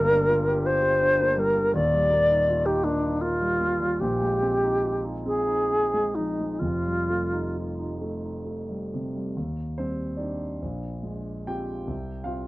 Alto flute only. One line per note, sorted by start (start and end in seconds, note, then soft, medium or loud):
0.00 0.68 A#4 loud
0.66 1.41 C5 loud
1.39 1.74 A#4 loud
1.75 2.67 D5 loud
2.66 2.85 G4 medium
2.84 3.23 D4 medium
3.21 4.02 F4 loud
4.00 5.04 G4 loud
5.26 6.16 G#4 medium
6.15 6.61 D#4 medium
6.59 7.98 F4 medium